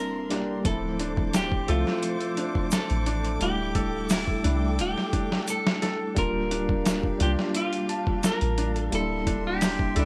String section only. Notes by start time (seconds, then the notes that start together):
Already playing: A#3 E5 C6
0.65 C5 D6
3.41 A4 G5
6.16 G4 F5
8.93 E5 C6